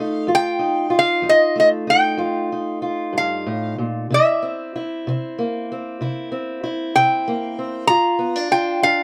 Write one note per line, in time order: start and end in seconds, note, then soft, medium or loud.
0.00 0.28 A3 medium
0.00 0.28 D#4 medium
0.00 0.26 F4 medium
0.00 0.28 F5 medium
0.27 0.86 F2 medium
0.27 0.89 F4 medium
0.35 0.98 G5 medium
0.59 1.22 D#4 medium
0.90 2.17 F4 medium
0.99 1.29 F5 medium
1.22 1.81 F2 medium
1.22 1.86 D#4 medium
1.29 1.58 D#5 medium
1.56 4.05 A3 medium
1.60 1.68 D#5 medium
1.87 2.51 D#4 medium
1.87 3.20 G5 medium
2.17 2.76 F2 medium
2.17 2.81 F4 medium
2.52 4.06 D#4 medium
2.82 4.05 F4 medium
3.13 3.46 G2 medium
3.18 3.76 F5 medium
3.46 3.78 A2 medium
3.78 4.10 A#2 medium
4.10 4.67 C3 medium
4.10 4.74 E4 medium
4.10 7.04 E5 medium
4.42 5.05 C4 medium
4.76 6.01 E4 medium
5.07 5.63 C3 medium
5.07 5.70 C4 medium
5.39 7.26 A#3 medium
5.72 6.30 C4 medium
6.01 6.57 C3 medium
6.01 6.62 E4 medium
6.32 6.94 C4 medium
6.64 7.89 E4 medium
6.96 7.51 C3 medium
6.96 7.57 C4 medium
6.96 7.87 G5 medium
7.28 7.86 A#3 medium
7.59 7.85 C4 soft
7.87 8.45 G2 medium
7.87 8.51 F4 medium
7.87 8.47 A#5 medium
8.19 8.36 B3 medium
8.36 8.82 D4 soft
8.51 9.03 F4 medium
8.51 8.83 G5 medium
8.82 9.03 G2 medium
8.82 9.03 D4 medium
8.82 9.03 F5 medium